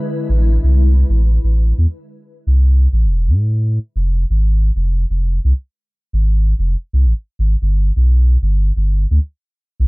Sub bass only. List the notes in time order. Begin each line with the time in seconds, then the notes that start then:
0.29 A1
0.64 C2
1.09 A1
1.44 A1
1.78 E2
2.47 C2
2.93 A1
3.04 E1
3.27 A2
3.96 F1
4.30 G#1
4.76 F1
5.10 F1
5.45 C2
6.13 G#1
6.59 F1
6.93 C2
7.05 G#1
7.39 G#1
7.62 G1
7.96 B1
8.42 G1
8.77 G1
9.11 D2
9.80 B1